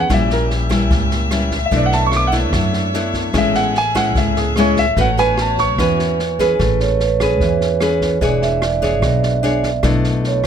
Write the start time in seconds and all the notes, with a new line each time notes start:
0.00 F#5
0.09 A#1 A#2 G3 A#3 C#4 E4 G4 E5, kick, cross-stick, snare
0.14 E5
0.30 A#4, snare
0.50 snare
0.69 G3 C#4 E4, kick, cross-stick, snare
0.91 C#2 A#2, kick, snare
1.11 snare
1.31 G3 C#4 E4, cross-stick, snare
1.51 kick, snare
1.66 E5
1.71 B1 B2 A3 B3 D4 E4 C#5, kick, snare
1.77 D5
1.86 F#5
1.92 E5 A5, snare
2.06 C#6
2.12 cross-stick, snare
2.16 D6
2.27 F#5
2.32 A3 D4 E4, kick, snare
2.53 F#2 F#3, kick, cross-stick, snare
2.73 snare
2.94 A3 D4 E4, snare
3.14 kick, snare
3.34 A1 A2 G#3 C#4 E4 G#4, kick, cross-stick, snare
3.38 E5
3.55 F#5, snare
3.75 G#5, snare
3.95 G#3 C#4 E4 F#5, kick, cross-stick, snare
4.15 C#2 A2 E5, kick, snare
4.36 G#4, snare
4.56 G#3 C#4 E4 C#5, cross-stick, snare
4.76 E5, kick, snare
4.96 A1 A3 B3 C#4 F#4 B4 C#5, kick, snare
5.01 F#5
5.17 C#4 F#4 B4 G#5, snare
5.37 cross-stick, snare
5.41 A5
5.58 C#6, kick, snare
5.78 E2 E3 C#4 F#4 B4, kick, cross-stick, snare
5.99 snare
6.19 snare
6.39 C#4 G#4 B4, kick, snare
6.59 A1 A3 B4, kick, cross-stick, snare
6.80 C#5, snare
7.00 B4, snare
7.20 C#4 G#4 B4, kick, cross-stick, snare
7.40 E2 E3, kick, snare
7.61 snare
7.81 C#4 G#4 B4, cross-stick, snare
8.01 kick, snare
8.21 E1 E3 D4 G#4 C#5 D5, kick, snare
8.42 E5, snare
8.62 D5, cross-stick, snare
8.82 D4 G#4 C#5, kick, snare
9.02 B1 B2, kick, cross-stick, snare
9.23 snare
9.43 D4 G#4 C#5, snare
9.63 kick, snare
9.83 B1 B2 A3 D4 E4, kick, cross-stick, snare
10.04 snare
10.24 C#5, snare
10.44 cross-stick, snare